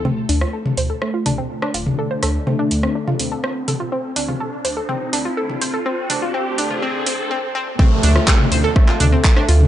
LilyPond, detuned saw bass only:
\new Staff \with { instrumentName = "Detuned saw bass" } { \clef bass \time 4/4 \key d \minor \tempo 4 = 124 r8 d,8 r8 d,8 r8 d,8 r8 d,,8 | r8 d,8 r8 d,8 r8 d,8 r8 d,,8 | r8 d,8 r8 d,8 r8 d,8 r8 d,,8 | r8 d,8 r8 d,8 r8 d,8 r4 |
r8 d,8 r8 d,8 r8 d,8 r8 d,8 | }